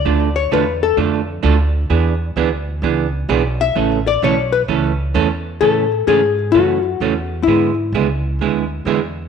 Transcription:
X:1
M:4/4
L:1/8
Q:"Swing" 1/4=129
K:A
V:1 name="Hollow-body jazz guitar"
d c B A z4 | z6 z e- | e d c B z4 | A2 G2 F4 |
E6- E z |]
V:2 name="Hollow-body jazz guitar"
[D,A,D=FA] z [D,A,DFA] z [D,A,DFA] z [D,A,DFA] z | [E,B,DG] z [E,B,DG] z [E,B,DG] z [E,B,DG] z | [C,E,A,CA] z [C,E,A,CA] z [C,E,A,CA] z [C,E,A,CA] z | [C,E,A,CA] z [C,E,A,CA] z [C,E,A,CA] z [C,E,A,CA] z |
[D,G,B,EG] z [D,G,B,EG] z [D,G,B,EG] z [D,G,B,EG] z |]
V:3 name="Upright bass" clef=bass
D,,2 E,,2 =F,,2 D,,2 | E,,2 D,,2 C,,2 B,,,2 | A,,,2 B,,,2 C,,2 E,,2 | A,,2 G,,2 F,,2 E,,2 |
G,,2 C,,2 D,,2 E,,2 |]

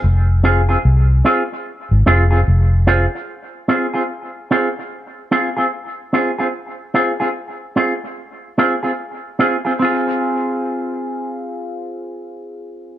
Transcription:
X:1
M:4/4
L:1/16
Q:"Swing 16ths" 1/4=74
K:Fm
V:1 name="Clean electric guitar"
z2 [CFA] [CFA] z2 [CFA] z3 [CFA] [CFA] z2 [CFA] z | z2 [CFA] [CFA] z2 [CFA] z3 [CFA] [CFA] z2 [CFA] [CFA] | z2 [CFA] [CFA] z2 [CFA] z3 [CFA] [CFA] z2 [CFA] [CFA] | [CFA]16 |]
V:2 name="Fingered electric bass" clef=bass
F,,,4 C,,2 z3 A,,, F,,,2 F,,,3 z | z16 | z16 | z16 |]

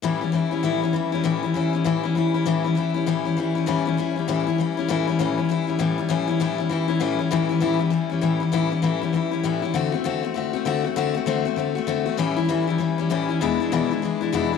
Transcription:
X:1
M:4/4
L:1/8
Q:"Swing" 1/4=197
K:Amix
V:1 name="Steel-string acoustic guitar"
[A,,E,G,CE] [G,CE] [E,G,CE] [G,CE] [A,,E,G,CE] [G,CE] [E,G,CE] [G,CE] | [A,,E,G,CE] [G,CE] [E,G,CE] [G,CE] [A,,E,G,CE] [G,CE] [E,G,CE] [G,CE] | [A,,E,G,CE] [G,CE] [E,G,CE] [G,CE] [A,,E,G,CE] [G,CE] [E,G,CE] [G,CE] | [A,,E,G,CE] [G,CE] [E,G,CE] [G,CE] [A,,E,G,CE] [G,CE] [E,G,CE] [G,CE] |
[A,,E,G,CE] [G,CE] [A,,E,G,CE] [G,CE] [E,G,CE] [G,CE] [A,,E,G,CE] [G,CE] | [A,,E,G,CE] [G,CE] [A,,E,G,CE] [G,CE] [E,G,CE] [G,CE] [A,,E,G,CE] [G,CE] | [A,,E,G,CE] [G,CE] [A,,E,G,CE] [G,CE] [E,G,CE] [G,CE] [A,,E,G,CE] [G,CE] | [A,,E,G,CE] [G,CE] [A,,E,G,CE] [G,CE] [E,G,CE] [G,CE] [A,,E,G,CE] [G,CE] |
[D,A,=CF] [A,CF] [D,A,CF] [A,CF] [D,A,CF] [A,CF] [D,A,CF] [A,CF] | [D,A,=CF] [A,CF] [D,A,CF] [A,CF] [D,A,CF] [A,CF] [D,A,CF] [A,CF] | [A,,E,G,CE] [G,CE] [A,,E,G,CE] [G,CE] [E,G,CE] [G,CE] [A,,E,G,CE] [G,CE] | [E,,B,,E,^G,DE] [E,G,DE] [E,,B,,E,G,DE] [E,G,DE] [E,G,DE] [E,G,DE] [E,,B,,E,G,DE] [E,G,DE] |]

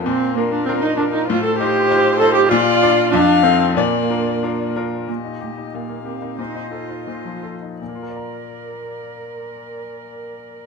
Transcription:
X:1
M:2/4
L:1/16
Q:1/4=92
K:Bb
V:1 name="Violin"
B8 | c8 | d4 f4 | d6 z2 |
e4 f4 | e4 e2 z2 | d8- | d8 |]
V:2 name="Viola"
C2 B, D C E D E | F A G4 A G | F4 D2 C2 | B,6 z2 |
G4 B4 | c4 c2 z2 | B8- | B8 |]
V:3 name="Grand piano"
B,,2 [DFB]2 [DFB]2 [DFB]2 | A,,2 [EFc]2 [EFc]2 [EFc]2 | B,,2 [DFd]2 F,,2 [EFA]2 | B,,2 [DFB]2 [DFB]2 [DFB]2 |
B,, E G E B,, B, G E | B,, E A E B,, F, A E | [B,,B,FBdb]8- | [B,,B,FBdb]8 |]
V:4 name="Cello"
C2 B, D C E D E | F A G4 A G | F4 D2 C2 | B,6 z2 |
B,2 A,2 B,2 C2 | E2 F4 z2 | B8- | B8 |]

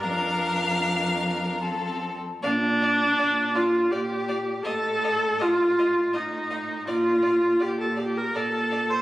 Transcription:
X:1
M:3/4
L:1/16
Q:1/4=81
K:Bb
V:1 name="Violin"
f8- f2 z2 | f2 f2 f2 f2 f2 f2 | f2 f2 f2 f2 f2 f2 | f2 f2 f2 f2 f2 f2 |]
V:2 name="Violin"
B8 A3 z | d2 d2 d2 d2 d2 d2 | e2 e2 e2 e2 e2 e2 | d2 d2 d2 d2 d2 d2 |]
V:3 name="Viola"
D8 C3 z | D6 F2 G4 | A4 F4 E4 | F4 G A G B A3 c |]
V:4 name="Cello" clef=bass
F,,8- F,,3 z | B,,4 B,,4 B,,4 | A,,4 A,,4 A,,4 | B,,4 B,,4 B,,4 |]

